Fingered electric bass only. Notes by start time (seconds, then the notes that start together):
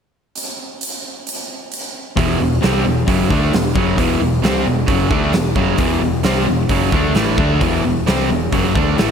2.17 E1
2.40 E1
2.63 C2
2.85 E1
3.08 F#1
3.31 D2
3.53 E1
3.75 F#1
3.98 E1
4.20 E1
4.42 C2
4.66 E1
4.88 F#1
5.11 D2
5.34 E1
5.56 F#1
5.79 E1
6.01 E1
6.24 C2
6.46 E1
6.69 F#1
6.92 D2
7.15 A1
7.39 D2
7.61 E1
7.84 E1
8.08 C2
8.30 E1
8.52 F#1
8.75 D2
8.99 A1